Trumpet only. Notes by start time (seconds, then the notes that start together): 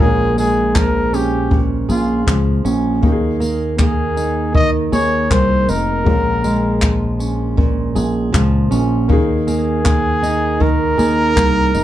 0.01 G#4
0.39 G#4
0.77 A#4
1.15 G4
1.90 F4
3.80 G#4
4.55 D#5
4.93 C#5
5.31 C5
5.70 A#4
9.48 G#4
10.62 A#4